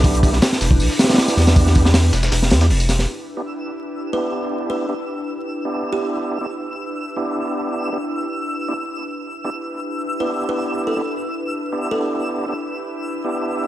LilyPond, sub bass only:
\new Staff \with { instrumentName = "Sub bass" } { \clef bass \time 4/4 \key e \minor \tempo 4 = 158 b,,4 r8 e,,8 b,,8 r4 e,8~ | e,4. e,,8 e,,8 e,8 e,,4 | r1 | r1 |
r1 | r1 | r1 | r1 |
r1 | }